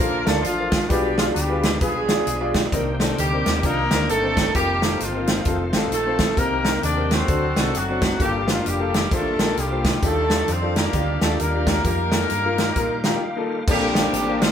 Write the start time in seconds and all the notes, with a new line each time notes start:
Already playing: F3 A#3 D4 F4 A#4
0.00 A#1 F4 A4 A#4 C5
0.24 D2 A3 F4 A4 A#4 D5, snare, closed hi-hat
0.41 A1 F3 A3 D4 F4, closed hi-hat
0.58 F4 A4 A#4 C5
0.72 kick, snare, closed hi-hat
0.87 B1 F3 G3 G#3 A#3 D4 F4 G4, kick, closed hi-hat
0.91 B2 G#4 B4
0.95 B3
1.15 F3 F4 G4 G#4 D5, snare, closed hi-hat
1.33 D2 G3 D4 G4, closed hi-hat
1.49 F4 G4 G#4 B4
1.63 snare, closed hi-hat
1.80 B1 G#3 D4 F4 G4 G#4 B4, kick, closed hi-hat
2.09 F4 G4 G#4 D5, snare, closed hi-hat
2.27 B1, closed hi-hat
2.41 F4 G4 G#4 D5
2.54 kick, snare, closed hi-hat
2.72 C2 C3 D#3 A#3 C4 D4 D#4 A#4, kick, closed hi-hat
2.78 G4
3.00 C4 D4 D#4 A4, snare, closed hi-hat
3.18 D2 G3 A#3 D#4 G4, closed hi-hat
3.32 C4 D4 D#4 A#4
3.46 D#2, snare, closed hi-hat
3.63 C2 A#3 C4 D4 D#4 F4 A#4, kick, closed hi-hat
3.91 D2 C4 D4 D#4 A#4, snare, closed hi-hat
4.09 G1 A3 D4 D#4 A4, closed hi-hat
4.23 C4 D4 D#4 C5
4.37 kick, snare, closed hi-hat
4.55 F1 D#3 G3 A#3 C4 D#4 F4 G4 A#4, kick, closed hi-hat
4.82 C4 D#4 F4 A4, snare, closed hi-hat
5.00 G1 F3 A#3 C4 F4, closed hi-hat
5.14 C4 D#4 F4 A#4
5.27 snare, closed hi-hat
5.45 F1 D#3 A3 C4 D#4 F4 A4, kick, closed hi-hat
5.73 A1 C4 D#4 F4 A4, snare, closed hi-hat
5.91 A#1 A3 C4 D#4 A4, closed hi-hat
6.06 C4 D#4 F4 C5
6.19 kick, snare, closed hi-hat
6.37 C2 C3 D#3 A#3 C4 D#4 G4 A#4, kick, closed hi-hat
6.65 C4 D#4 G4 A#4, snare, closed hi-hat
6.83 D#2 D4 D5, closed hi-hat
6.97 C4 D#4 G4 A#4
7.11 C4 F#4 A4 C5, snare, closed hi-hat
7.27 D2 D3 F#3 C4 D4 F#4 A4, kick, closed hi-hat
7.56 C2 A3 C4 D4 F#4 A4 C5, snare, closed hi-hat
7.74 F#1 F#3 A3 C4 F#4, closed hi-hat
7.89 C4 D4 F#4 C5
8.02 kick, snare, closed hi-hat
8.20 G1 G2 G3 A#3 D4 F4 G4 A4, kick, closed hi-hat
8.47 F3 A#3 F4 G4 C5, snare, closed hi-hat
8.65 F1 G3 A#3 D4 G4, closed hi-hat
8.79 A#3 F4 G4 A4
8.94 snare, closed hi-hat
9.11 A1 A3 A#3 D4 F4 G4 A4 C5, kick, closed hi-hat
9.39 A#1 A#3 F4 G4 A#4, snare, closed hi-hat
9.56 C2 G3 A#3 D4 G4, closed hi-hat
9.71 A#3 F4 G4 C5
9.85 kick, snare, closed hi-hat
10.02 D#2 D#3 G3 A3 D4 D#4 F4 G4 A4, kick, closed hi-hat
10.30 D4 D#4 F4 G4, snare, closed hi-hat
10.48 F2 C4 C5, closed hi-hat
10.62 D4 D#4 F4 A4
10.75 A#3 D4 G4 A#4, snare, closed hi-hat
10.93 D2 D4 D#4 F4 G4, kick, closed hi-hat
11.21 D#2 A3 D4 D#4 F4 G4 A4, snare, closed hi-hat
11.39 D#2 A#3 D4 G4 A#4, closed hi-hat
11.54 D4 D#4 F4 G4
11.67 kick, snare, closed hi-hat
11.84 F2 D#3 G3 A#3 D#4 F4 G4 A#4, kick, closed hi-hat
12.12 A#3 D#4 F4 A4, snare, closed hi-hat
12.30 G2, closed hi-hat
12.45 A#3 D#4 F4 A#4
12.58 snare, closed hi-hat
12.76 A#2 A#3 D#4 F4 A#4, kick, closed hi-hat
13.04 A#3 D#4 F4 G4 A#5, snare, closed hi-hat
13.14 G5
13.24 F5
13.37 A#3 D#4 F4 A4
13.68 A#1 A#2 D3 G3 A#3 C4 D4 G4 A4, kick, crash
13.95 A#3 C4 D4 A4, snare, closed hi-hat
14.13 A1, closed hi-hat
14.28 A#3 C4 D4 G4
14.39 F3 F4, snare, closed hi-hat